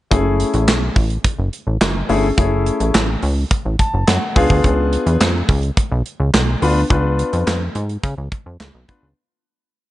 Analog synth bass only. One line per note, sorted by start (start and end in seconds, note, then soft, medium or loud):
0.11 0.44 F#1 loud
0.54 0.69 A1 loud
0.68 0.90 B1 loud
0.96 1.18 A1 medium
1.39 1.50 F#1 medium
1.67 1.78 A1 medium
1.81 2.03 F#1 medium
2.09 2.31 G1 loud
2.38 2.71 F#1 medium
2.80 2.91 A1 medium
2.95 3.17 A1 loud
3.23 3.45 C#2 loud
3.65 3.76 A1 medium
3.94 4.05 F#1 medium
4.08 4.19 F#2 loud
4.36 4.47 C#2 loud
4.50 4.61 D2 loud
4.64 4.97 C#2 loud
5.06 5.17 E2 medium
5.21 5.43 F2 medium
5.49 5.71 C#2 loud
5.92 6.02 B1 medium
6.20 6.31 C#2 medium
6.34 6.56 B1 medium
6.62 6.84 D2 medium
6.90 7.24 C#2 loud
7.33 7.44 F2 loud
7.47 7.69 F2 loud
7.75 7.97 G#2 medium
8.04 8.15 C#3 loud
8.18 8.29 C#2 medium
8.46 8.57 F2 medium
8.60 8.71 C#2 medium
8.74 8.85 B1 medium
9.03 9.14 C#2 medium